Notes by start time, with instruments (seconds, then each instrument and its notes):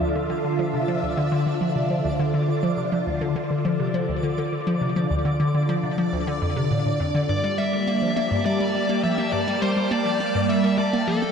Already playing: string machine D3 D4 F4 A4 E5, synth texture D5
0.01 synth arpeggio sound D2
0.15 synth arpeggio sound D3
0.30 synth arpeggio sound D3
0.44 synth arpeggio sound D3
0.59 synth arpeggio sound F3
0.74 synth arpeggio sound C3
0.88 synth arpeggio sound F3
1.03 synth arpeggio sound D2
1.17 synth arpeggio sound D3
1.32 synth arpeggio sound D3
1.46 synth arpeggio sound D3
1.61 synth arpeggio sound F3
1.76 synth arpeggio sound C3
1.90 synth arpeggio sound F3
2.05 synth arpeggio sound D2
2.19 synth arpeggio sound D3
2.34 synth arpeggio sound D3
2.48 synth arpeggio sound D3
2.63 synth arpeggio sound F3
2.77 synth arpeggio sound C3
2.92 synth arpeggio sound F3
3.07 synth arpeggio sound D2
3.21 synth arpeggio sound D3
3.36 synth arpeggio sound D3
3.51 synth arpeggio sound D3
3.65 synth arpeggio sound F3
3.80 synth arpeggio sound C3
3.89 string machine D5
3.94 synth arpeggio sound F3
4.09 synth arpeggio sound D2
4.23 synth arpeggio sound D3
4.38 synth arpeggio sound D3
4.53 synth arpeggio sound D3
4.67 synth arpeggio sound F3
4.81 synth arpeggio sound C3
4.96 synth arpeggio sound F3
5.11 synth arpeggio sound D2
5.25 synth arpeggio sound D3
5.40 synth arpeggio sound D3
5.55 synth arpeggio sound D3
5.69 synth arpeggio sound F3
5.83 synth arpeggio sound C3
5.98 synth arpeggio sound F3
6.13 synth arpeggio sound D2
6.27 synth arpeggio sound D3
6.42 synth arpeggio sound F2
6.56 synth arpeggio sound C3
6.71 synth arpeggio sound A2
6.85 synth arpeggio sound A2
7.00 synth arpeggio sound F2
7.15 synth arpeggio sound D3
7.29 synth arpeggio sound G2, string machine G3, lead electric guitar D5
7.44 synth arpeggio sound G3, string machine A#3
7.55 synth arpeggio sound G3, string machine G4, lead electric guitar E5
7.73 synth arpeggio sound G3, string machine A5
7.87 synth arpeggio sound A#3
8.02 synth arpeggio sound F3
8.16 synth arpeggio sound A#3, lead electric guitar E5
8.31 synth arpeggio sound G2
8.46 synth arpeggio sound G3, lead electric guitar D5
8.60 synth arpeggio sound G3
8.75 synth arpeggio sound G3
8.89 synth arpeggio sound A#3
9.03 synth arpeggio sound F3, lead electric guitar E5
9.18 synth arpeggio sound A#3
9.32 synth arpeggio sound G2, lead electric guitar D5
9.48 synth arpeggio sound G3
9.62 synth arpeggio sound G3, lead electric guitar C5
9.77 synth arpeggio sound G3
9.91 synth arpeggio sound A#3, lead electric guitar D5
10.06 synth arpeggio sound F3
10.20 synth arpeggio sound A#3
10.35 synth arpeggio sound G2
10.49 synth arpeggio sound G3, lead electric guitar E5
10.64 synth arpeggio sound G3
10.78 synth arpeggio sound G3, lead electric guitar D5
10.93 synth arpeggio sound A#3
11.07 synth arpeggio sound F3, lead electric guitar A4
11.22 synth arpeggio sound A#3